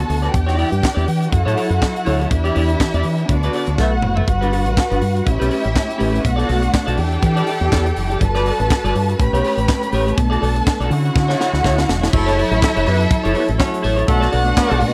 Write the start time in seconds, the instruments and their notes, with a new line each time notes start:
Already playing: string section D3 B3 F#4, violin section A4 A5
0.08 fingered electric bass D2, muted clean electric guitar stroke, open hi-hat
0.22 clean electric guitar F#4 B4 D5, closed hi-hat
0.33 fingered electric bass E2, string section E3 D4 G4, violin section G4 G5, muted clean electric guitar stroke, kick, closed hi-hat
0.46 clean electric guitar E4 G4 D5, snare, closed hi-hat
0.57 clean electric guitar E4 G4 D5, open hi-hat
0.70 fingered electric bass G2, muted clean electric guitar stroke, closed hi-hat
0.82 muted clean electric guitar stroke, kick, snare, clap
0.95 fingered electric bass E2, clean electric guitar E4 G4 D5, closed hi-hat
1.06 fingered electric bass E3, muted clean electric guitar stroke, open hi-hat
1.21 muted clean electric guitar stroke, closed hi-hat
1.30 fingered electric bass F#2, string section F#3 E4 A4, violin section F#4 F#5, muted clean electric guitar stroke, kick, closed hi-hat
1.45 fingered electric bass A2, clean electric guitar E4 A4 C#5, closed hi-hat
1.56 clean electric guitar E4 A4 C#5, open hi-hat
1.69 fingered electric bass F#2, muted clean electric guitar stroke, closed hi-hat
1.81 muted clean electric guitar stroke, kick, snare, clap
1.94 muted clean electric guitar stroke, closed hi-hat
2.05 fingered electric bass D2, clean electric guitar E4 A4 C#5, open hi-hat
2.20 clean electric guitar E4 A4 C#5, closed hi-hat
2.30 fingered electric bass E2, string section E3 D4 G4, violin section E4 E5, muted clean electric guitar stroke, kick, closed hi-hat
2.44 clean electric guitar E4 G4 D5, closed hi-hat
2.55 fingered electric bass E2, clean electric guitar E4 G4 D5, open hi-hat
2.69 muted clean electric guitar stroke, closed hi-hat
2.80 muted clean electric guitar stroke, kick, snare, clap
2.94 fingered electric bass E2, clean electric guitar E4 G4 D5, closed hi-hat
3.03 fingered electric bass E3, muted clean electric guitar stroke, open hi-hat
3.18 muted clean electric guitar stroke, closed hi-hat
3.29 fingered electric bass D2, string section D3 B3 F#4, violin section D4 D5, muted clean electric guitar stroke, kick, closed hi-hat
3.43 clean electric guitar F#4 B4 D5, closed hi-hat
3.53 clean electric guitar F#4 B4 D5, open hi-hat
3.67 fingered electric bass D2, muted clean electric guitar stroke, closed hi-hat
3.77 fingered electric bass B1, string section A3 E4, violin section F#4 F#5, clean electric guitar A4 B4 E5, kick, snare
3.92 muted clean electric guitar stroke
4.02 fingered electric bass F#1, muted clean electric guitar stroke, mid tom
4.15 clean electric guitar A4 B4 E5, floor tom
4.27 fingered electric bass G1, string section G3 F#4 B4, violin section F#4 F#5, muted clean electric guitar stroke, kick, closed hi-hat
4.41 clean electric guitar D4 F#4 B4, closed hi-hat
4.52 clean electric guitar D4 F#4 B4, open hi-hat
4.65 fingered electric bass A1, muted clean electric guitar stroke, closed hi-hat
4.76 muted clean electric guitar stroke, kick, snare, clap
4.90 fingered electric bass G1, clean electric guitar D4 F#4 B4, closed hi-hat
5.01 fingered electric bass G2, muted clean electric guitar stroke, open hi-hat
5.15 muted clean electric guitar stroke, closed hi-hat
5.26 fingered electric bass A1, string section A3 C#4 G4, violin section E4 E5, muted clean electric guitar stroke, kick, closed hi-hat
5.39 fingered electric bass B1, clean electric guitar C#4 G4 B4, closed hi-hat
5.49 clean electric guitar C#4 G4 B4, open hi-hat
5.64 fingered electric bass A1, muted clean electric guitar stroke, closed hi-hat
5.74 muted clean electric guitar stroke, kick, snare, clap
5.88 muted clean electric guitar stroke, closed hi-hat
5.98 fingered electric bass A1, clean electric guitar C#4 G4 B4, open hi-hat
6.12 clean electric guitar C#4 G4 B4, closed hi-hat
6.23 fingered electric bass B1, string section B3 D4, violin section F#4 F#5, muted clean electric guitar stroke, kick, closed hi-hat
6.36 clean electric guitar F#4 A4 D5, closed hi-hat
6.47 fingered electric bass B1, clean electric guitar F#4 A4 D5, open hi-hat
6.62 muted clean electric guitar stroke, closed hi-hat
6.72 muted clean electric guitar stroke, kick, snare, clap
6.86 fingered electric bass B1, clean electric guitar F#4 A4 D5, closed hi-hat
6.97 fingered electric bass E2, string section E3 E4 G4 A4, violin section G4 G5, muted clean electric guitar stroke, open hi-hat
7.12 muted clean electric guitar stroke, closed hi-hat
7.23 fingered electric bass E3, muted clean electric guitar stroke, kick, closed hi-hat
7.36 clean electric guitar G4 A4 D5, closed hi-hat
7.47 clean electric guitar G4 A4 D5, open hi-hat
7.61 fingered electric bass E2, muted clean electric guitar stroke, closed hi-hat
7.72 fingered electric bass E2, clean electric guitar G4 A4 D5, kick, snare, clap
7.86 muted clean electric guitar stroke, closed hi-hat
7.96 fingered electric bass F#1, muted clean electric guitar stroke, open hi-hat
8.10 clean electric guitar G4 A4 D5, closed hi-hat
8.21 fingered electric bass G1, string section G3 F#4 B4, violin section A4 A5, muted clean electric guitar stroke, kick, closed hi-hat
8.35 clean electric guitar F#4 B4 D5, snare, closed hi-hat
8.45 clean electric guitar F#4 B4 D5, open hi-hat
8.59 fingered electric bass A1, muted clean electric guitar stroke, closed hi-hat
8.70 muted clean electric guitar stroke, kick, snare, clap
8.84 fingered electric bass G1, clean electric guitar F#4 B4 D5, closed hi-hat
8.95 fingered electric bass G2, muted clean electric guitar stroke, open hi-hat
9.08 muted clean electric guitar stroke, closed hi-hat
9.18 fingered electric bass A1, string section A3 C#4 G4, violin section B4 B5, muted clean electric guitar stroke, kick, closed hi-hat
9.33 fingered electric bass B1, clean electric guitar G4 B4 C#5, closed hi-hat
9.44 clean electric guitar G4 B4 C#5, open hi-hat
9.57 fingered electric bass A1, muted clean electric guitar stroke, closed hi-hat
9.69 muted clean electric guitar stroke, kick, snare, clap
9.82 muted clean electric guitar stroke, closed hi-hat
9.92 fingered electric bass A1, clean electric guitar G4 B4 C#5, open hi-hat
10.07 clean electric guitar G4 B4 C#5, closed hi-hat
10.17 fingered electric bass B1, string section B3 D4, violin section A4 A5, muted clean electric guitar stroke, kick, closed hi-hat
10.30 clean electric guitar F#4 A4 D5, closed hi-hat
10.41 fingered electric bass B1, clean electric guitar F#4 A4 D5, open hi-hat
10.55 muted clean electric guitar stroke, closed hi-hat
10.66 muted clean electric guitar stroke, kick, snare, clap
10.80 fingered electric bass B1, clean electric guitar F#4 A4 D5, closed hi-hat
10.90 fingered electric bass D3, string section D3 C#4 E4 F#4, violin section F#4 F#5, muted clean electric guitar stroke, open hi-hat
11.05 muted clean electric guitar stroke, closed hi-hat
11.15 fingered electric bass D3, muted clean electric guitar stroke, kick, snare
11.28 clean electric guitar E4 F#4 C#5, snare
11.39 clean electric guitar E4 F#4 C#5, snare
11.53 fingered electric bass D2, muted clean electric guitar stroke, snare
11.63 fingered electric bass D2, clean electric guitar E4 F#4 C#5, kick, snare
11.78 muted clean electric guitar stroke, snare
11.88 fingered electric bass E1, muted clean electric guitar stroke, snare
12.01 clean electric guitar E4 F#4 C#5, snare
12.13 fingered electric bass F#1, horn section F#3 A3 E4 A4, string section F#3 E4 A4, violin section E4 E5, muted clean electric guitar stroke, kick, crash
12.26 clean electric guitar E4 A4 C#5, snare, closed hi-hat
12.37 clean electric guitar E4 A4 C#5, open hi-hat
12.51 fingered electric bass A1, horn section A3 C#4 F#4 C#5, muted clean electric guitar stroke, closed hi-hat
12.62 horn section F#3 A3 E4 A4, muted clean electric guitar stroke, kick, snare, clap
12.75 fingered electric bass F#1, clean electric guitar E4 A4 C#5, closed hi-hat
12.86 fingered electric bass F#2, horn section B3 G4 B4, muted clean electric guitar stroke, open hi-hat
12.99 muted clean electric guitar stroke, closed hi-hat
13.10 muted clean electric guitar stroke, kick, closed hi-hat
13.24 fingered electric bass F#1, clean electric guitar E4 A4 C#5, closed hi-hat
13.34 horn section B3 G4 B4, clean electric guitar E4 A4 C#5, open hi-hat
13.48 fingered electric bass A1, muted clean electric guitar stroke, closed hi-hat
13.58 horn section A3 C#4 F#4 C#5, muted clean electric guitar stroke, kick, snare, clap
13.72 muted clean electric guitar stroke, closed hi-hat
13.82 fingered electric bass A1, clean electric guitar E4 A4 C#5, open hi-hat
13.96 clean electric guitar E4 A4 C#5, closed hi-hat
14.06 fingered electric bass B1, horn section F#3 A3 D4 A4, string section A3 B3 D4, violin section F#4 F#5, muted clean electric guitar stroke, kick, closed hi-hat
14.20 clean electric guitar F#4 A4 D5, snare, closed hi-hat
14.31 fingered electric bass B1, clean electric guitar F#4 A4 D5, open hi-hat
14.45 horn section B3 D4 A4 D5, muted clean electric guitar stroke, closed hi-hat
14.55 horn section F#3 B3 D4 B4, muted clean electric guitar stroke, kick, snare, clap
14.69 fingered electric bass B1, clean electric guitar F#4 A4 D5, closed hi-hat
14.80 fingered electric bass B2, muted clean electric guitar stroke, open hi-hat